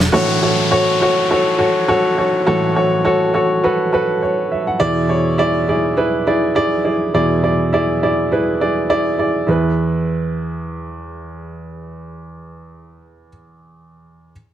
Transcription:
0.00 snare
0.12 A2 E3 F#4 A4 C#5, downlifter
0.42 F#4 A4 C#5
0.71 F#4 A4 C#5
1.01 F#4 A4 C#5
1.30 F#4 A4 C#5
1.58 F#4 A4 C#5
1.88 F#4 A4 C#5
2.17 F#4 A4 C#5
2.46 A2 E3 F#4 A4 C#5
2.75 F#4 A4 C#5
3.05 F#4 A4 C#5
3.34 F#4 A4 C#5
3.64 F#4 A4 B4
3.93 F#4 A4 B4
4.22 C#5
4.52 E5
4.67 F#5
4.79 E2 B2 E4 G#4 D5
5.08 E4 G#4 C#5
5.38 E4 G#4 D5
5.68 E4 G#4 D5
5.97 E4 G#4 B4
6.27 E4 G#4 D5
6.55 E4 G#4 D5
6.84 E4 G#4 D5
7.14 E2 B2 E4 G#4 D5
7.43 E4 G#4 D5
7.73 E4 G#4 D5
8.03 E4 G#4 D5
8.32 E4 G#4 B4
8.61 E4 G#4 D5
8.90 E4 G#4 D5
9.19 E4 G#4 D5
9.47 E2 E4 G#4 B4

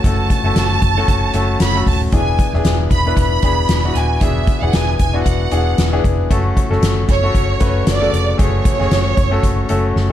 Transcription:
Already playing: A3 C#4 F#4 A4 B4
0.04 F#1 A3 C#4 F#4 A4 A5, kick, closed hi-hat
0.30 kick, closed hi-hat
0.44 F#1 A3 C#4 F#4 A4
0.55 F#1, snare, closed hi-hat
0.82 F#1, kick, closed hi-hat
0.97 A3 C#4 F#4 A4
1.08 F#1, kick, closed hi-hat
1.34 F#1 A3 C#4 F#4 A4, closed hi-hat
1.60 F#1 B5, snare, closed hi-hat
1.74 A3 C#4 F#4 A4
1.86 D#1 A5, kick, open hi-hat
2.12 E1 E3 B3 D4 E4 G#4 G#5, kick, closed hi-hat
2.39 kick, closed hi-hat
2.53 E1 B3 D4 E4 G#4, snare
2.65 E1, snare, closed hi-hat
2.91 E1 B5, kick, closed hi-hat
3.06 B3 D4 E4 B4
3.16 E1 B5, kick, closed hi-hat
3.42 E1 B3 D4 E4 G#4, kick, closed hi-hat
3.69 E1, snare, closed hi-hat
3.84 B3 D4 E4 F#4
3.95 D#1 G#5, closed hi-hat
4.20 E1 E3 B3 D4 E4 G#4 E5, kick, closed hi-hat
4.47 kick, closed hi-hat
4.61 E1 B3 D4 E4 G#4 F#5
4.72 E1 G#5, snare, closed hi-hat
4.98 E1 G#5, kick, closed hi-hat
5.13 B3 D4 E4 F#4
5.24 E1 F#5, kick, closed hi-hat
5.51 E1 B3 D4 E4 G#4, closed hi-hat
5.78 E1, snare, closed hi-hat
5.92 B3 D4 E4 G#4
6.04 F1, kick, closed hi-hat
6.30 F#1 A3 C#4 F#4 A4, kick, closed hi-hat
6.57 kick, closed hi-hat
6.70 F#1 A3 C#4 F#4 A4, snare
6.82 F#1, snare, closed hi-hat
7.08 F#1 C#5, kick, closed hi-hat
7.22 A3 C#4 F#4 A4
7.34 F#1, kick, closed hi-hat
7.60 F#1 A3 C#4 F#4 B4, kick, closed hi-hat
7.87 F#1 D5, snare, closed hi-hat
8.01 C#3 A3 F#4 A4
8.13 F1, closed hi-hat
8.38 F#1 A3 C#4 F#4 G#4 C#5, kick, closed hi-hat
8.65 kick, closed hi-hat
8.79 F#1 A3 C#4 F#4 G#4, snare
8.91 F#1, snare, closed hi-hat
9.17 F#1, kick, closed hi-hat
9.31 A3 C#4 F#4 A4
9.43 F#1, kick, closed hi-hat
9.69 F#1 A3 C#4 F#4 A4, closed hi-hat
9.96 F#1, snare

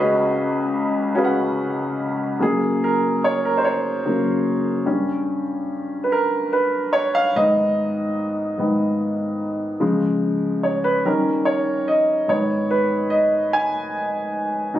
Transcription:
Already playing: C#2 C#3 C#4 F#4 G#4 B4
0.00 D#5
1.15 C#4 F#4 G#4 B4 F5
1.25 F#5
2.39 F#2 C#3 A#3 G#4
2.84 A#4
3.24 C#5
3.45 A#4
3.57 C5
3.64 C#5
4.05 F#2 C#3 A#3
4.86 G2 G3 C#4
6.04 B4
6.12 A#4
6.53 B4
6.93 C#5
7.15 F5
7.36 G#2 D#3 B3 D#5
8.58 G#2 D#3 B3
9.80 C#3 F3 G#3
10.63 C#5
10.84 B4
11.05 D#3 G3 C#4 A#4
11.45 C#5
11.88 D#5
12.28 G#2 D#3 B3 C#5
12.71 B4
13.10 D#5
13.53 G#5
14.74 B2 F#3 D#4

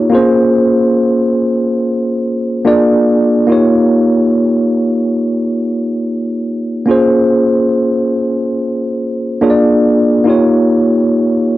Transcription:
Already playing: A#3 D#4 F4 G4 C#5
0.10 A#3 C4 F4 G#4
0.15 C#4 C5
2.65 A#3 D4 F4 G#4 D5
3.47 A#3 D#4 F4
3.51 G4 C#5
6.86 A#3 C#4 F4 G#4
6.91 C5
9.41 A#3 D4 F4 G#4 C#5
9.50 D5
10.24 A#3 D#4 F4
10.28 G4 C#5

